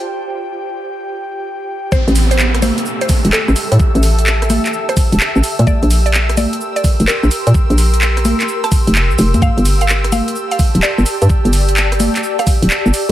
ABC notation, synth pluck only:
X:1
M:4/4
L:1/16
Q:"Swing 16ths" 1/4=128
K:Aphr
V:1 name="Synth pluck"
z16 | c2 z c2 z c2 z c2 z A2 z2 | z8 z c6 z | d2 z d2 z d2 z d2 z B2 z2 |
z8 z a6 z | f2 z f2 z f2 z f2 z d2 z2 | z8 z f6 z |]